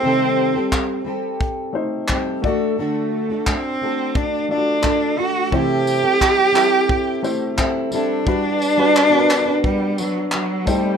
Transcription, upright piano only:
X:1
M:4/4
L:1/16
Q:1/4=87
K:G
V:1 name="Upright piano"
[A,_Ec]4- [A,Ec] z4 z [A,Ec]4 [A,Fd]2- | [A,Fd]4- [A,Fd] z4 z [A,=F^Fd]6 | [A,Ec]6- [A,Ec] z3 [A,Ec]6 | [G,FB]3 [G,FB]2 [B,F_B=B]6- [B,F_B=B] z2 [A,_Ec]2 |]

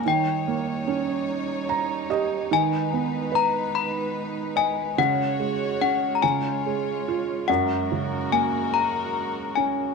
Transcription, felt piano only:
X:1
M:6/8
L:1/8
Q:3/8=48
K:F#
V:1 name="Felt piano"
z4 a d | z6 | z6 | z6 |]
V:2 name="Felt piano"
D, A, C3 =G | D, B, B3 d | C, G, C C, G, E | F,, C, A,3 C |]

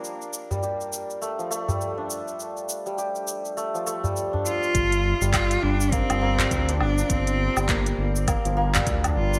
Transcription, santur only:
X:1
M:4/4
L:1/16
Q:"Swing 16ths" 1/4=102
K:Gm
V:1 name="Santur"
z3 G, G4 A, F, A, G, z D z2 | z3 G, G4 A, F, A, G, z D z2 | z3 G, G4 B, F, B, G, z D z2 | z3 G, G4 B, F, B, G, z D z2 |]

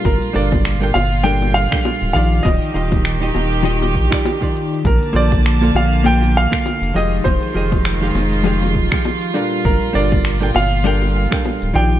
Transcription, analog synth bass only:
X:1
M:4/4
L:1/16
Q:"Swing 16ths" 1/4=100
K:Gm
V:1 name="Analog synth bass" clef=bass
G,,, z G,,,4 G,,,4- G,,, z2 D,,, B,,,2 | E,,, z E,,,4 E,,,4 B,,, z4 z | B,,, z B,,,4 B,,,4- B,,, z2 F,,, F,,,2 | F,,, z F,,,4 F,,,4 E,,, z4 z |
G,,, z G,,,4 G,,,4- G,,, z2 D,,, B,,,2 |]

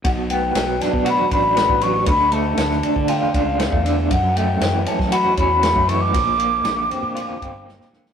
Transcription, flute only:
X:1
M:4/4
L:1/16
Q:1/4=118
K:Bm
V:1 name="Flute"
f2 g4 a2 b2 b4 c'2 | b2 a6 g2 =f4 z2 | f2 g4 a2 b2 b4 c' d'- | d'12 z4 |]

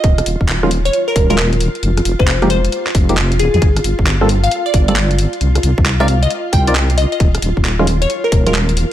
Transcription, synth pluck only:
X:1
M:4/4
L:1/16
Q:"Swing 16ths" 1/4=134
K:Eb
V:1 name="Synth pluck"
z6 z _d2 B2 B z4 | z3 c z2 c z6 z A A | z6 z f2 d2 d z4 | z4 z f z e z2 g z3 e e |
z6 z _d2 B2 B z4 |]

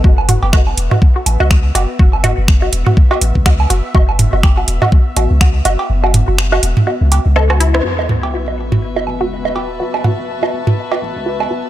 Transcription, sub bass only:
X:1
M:4/4
L:1/16
Q:"Swing 16ths" 1/4=123
K:F#m
V:1 name="Sub bass" clef=bass
F,,,3 F,,,3 E,,, z3 A,,, C,,3 F,,, z | F,,,3 F,,,3 E,,, z3 A,,, C,,3 F,,, z | F,,,3 F,,,3 E,,, z3 A,,, C,,3 F,,, z | F,,,3 F,,,3 E,,, z2 C,,2 C,,4- C,, |
F,,,3 F,,,3 E,,, z3 A,,, C,,3 F,,, z | F,,,3 F,,,3 E,,, z3 A,,, C,,3 F,,, z |]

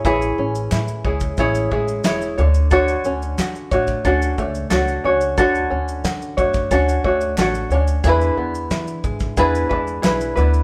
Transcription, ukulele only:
X:1
M:4/4
L:1/8
Q:1/4=90
K:Dlyd
V:1 name="Ukulele"
[EGc]3 [EGc] [EGc] [EGc] [EGc] [DFc] | [DFAc]3 [DFc] [DFAc] [DFc] [DFAc] [DFc] | [DFAc]3 [DFc] [DFAc] [DFc] [DFAc] [DFc] | [DEGB]4 [DEGB] [DEB] [DEGB] [DEB] |]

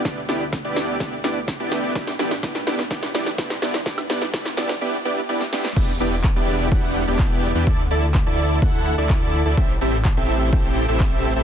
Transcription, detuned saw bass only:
X:1
M:4/4
L:1/16
Q:1/4=126
K:Em
V:1 name="Detuned saw bass" clef=bass
D,,2 D,,3 D,,3 D,,2 D,,3 D,,3 | A,,,2 A,,,2 A,,,2 A,,,2 A,,,2 A,,,2 A,,,2 G,,,2 | G,,,2 G,,,2 G,,,2 G,,,2 z8 | E,,,2 E,,,3 E,,,3 E,,,3 E,,,4 E,, |
D,,2 D,,3 D,,3 D,,3 D,,4 D,, | A,,,2 A,,,3 A,,,3 A,,,3 A,,,4 A,,, |]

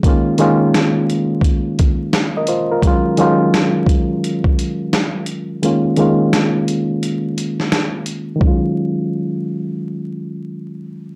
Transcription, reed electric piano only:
X:1
M:4/4
L:1/16
Q:"Swing 16ths" 1/4=86
K:Ebm
V:1 name="Reed electric piano"
z12 z [Be] [F=c] [FB]- | [FB] z12 z3 | z16 | z16 |]
V:2 name="Reed electric piano"
[E,A,B,DF]2 [E,A,B,DF]6 z8 | [E,G,A,DF]2 [E,G,A,DF]6 z8 | [E,A,B,DF]2 [E,A,B,DF]6 z8 | [E,G,A,DF]16 |]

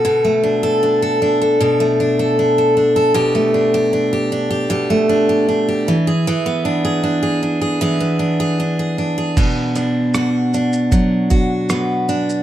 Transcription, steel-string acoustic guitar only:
X:1
M:4/4
L:1/16
Q:1/4=77
K:Bm
V:1 name="Steel-string acoustic guitar"
[B,,A] A, D A D A D A [B,,A] A, D A D A D A | [B,,G] A, D G D G D G [B,,G] A, D G D G E, ^G | [E,^G] B, D G D G D G [E,G] B, D G D G D G | B,,2 D2 F2 D2 F,2 F2 B,2 D2 |]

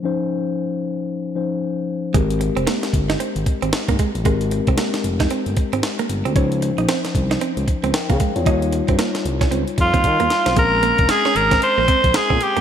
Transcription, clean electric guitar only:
X:1
M:4/4
L:1/16
Q:"Swing 16ths" 1/4=114
K:Ab
V:1 name="Clean electric guitar"
z16 | A, z2 C B, z2 E C z2 C z B, A, z | A, z2 C B, z2 E C z2 C z B, z C | D z2 E C z2 E C z2 C z B, A, z |
E z2 C B, z2 D C z2 C z B, z C | A, z B, z2 D z C z B, C z2 C z B, |]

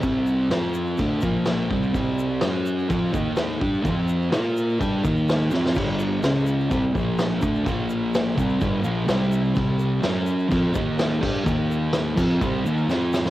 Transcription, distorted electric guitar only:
X:1
M:4/4
L:1/8
Q:1/4=126
K:Clyd
V:1 name="Distorted electric guitar"
[C,G,C]2 [=F,C=F]2 [D,A,D] [_B,,F,_B,]2 [C,G,C] | [C,G,C]2 [F,^CF]2 [=F,=C=F] [_E,_B,_E]2 [G,DG] | [=F,C=F]2 [_B,F_B]2 [G,DG] [_E,B,_E]2 [F,CF] | [G,,D,G,]2 [^C,^G,^C]2 [=C,=G,=C] [_B,,=F,_B,]2 [D,A,D] |
[_B,,=F,_B,]3 [C,G,C] [G,,D,G,] [B,,F,B,] [C,G,C]2 | [C,G,C]2 [F,^CF]2 [=F,=C=F] [_E,_B,_E]2 [G,DG] | [_E,_B,_E]3 [=F,C=F] [C,G,C] [E,B,E] [F,CF]2 |]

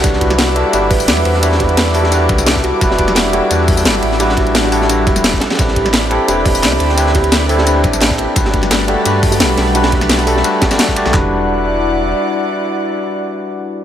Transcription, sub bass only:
X:1
M:4/4
L:1/16
Q:1/4=173
K:Em
V:1 name="Sub bass" clef=bass
C,,6- C,, z G,,,4 E,,2 E,,2- | E,,8- E,,2 C,,4- C,, z | E,,,6- E,,, z E,,4 G,,,2 A,,,2- | A,,,8- A,,,2 E,,,4 z2 |
A,,,6- A,,, z E,,,4 C,,2 D,,2- | D,,8- D,,2 A,,,4- A,,, z | G,,,6- G,,, z G,,4 B,,,2 B,,,2- | B,,,8 z6 z B,,, |
E,,,12 z4 | z16 |]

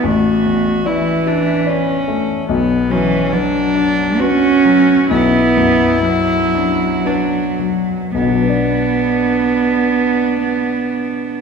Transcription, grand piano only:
X:1
M:3/4
L:1/8
Q:1/4=66
K:Bm
V:1 name="Grand piano"
[A,,,A,] E,, d E d A, | B,,, F, B D B F, | B,,, F,, B D B F, | [B,,,B,,F,DBd]6 |]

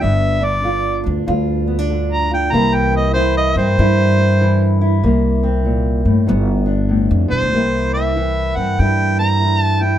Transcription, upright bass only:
X:1
M:4/4
L:1/16
Q:"Swing" 1/4=96
K:Cmix
V:1 name="Upright bass" clef=bass
G,,,6 D,,2 D,,8 | C,,6 G,,2 G,,8 | C,,6 G,,2 G,,,4- G,,, F,, E,, D,, | C,,6 G,,2 G,,8 |]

